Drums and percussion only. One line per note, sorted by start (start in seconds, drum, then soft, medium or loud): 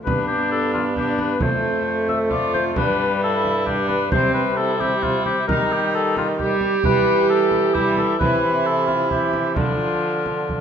0.07 frame drum medium
0.75 frame drum soft
0.96 frame drum soft
1.19 frame drum medium
1.41 frame drum medium
2.09 frame drum soft
2.31 frame drum soft
2.55 frame drum medium
2.76 frame drum medium
3.44 frame drum soft
3.67 frame drum soft
3.89 frame drum soft
4.12 frame drum medium
4.81 frame drum medium
5.03 frame drum soft
5.26 frame drum soft
5.49 frame drum medium
6.17 frame drum medium
6.39 frame drum soft
6.61 frame drum soft
6.84 frame drum medium
7.51 frame drum medium
7.75 frame drum soft
7.97 frame drum soft
8.21 frame drum medium
8.88 frame drum soft
9.11 frame drum soft
9.33 frame drum medium
9.56 frame drum medium
10.26 frame drum soft
10.49 frame drum soft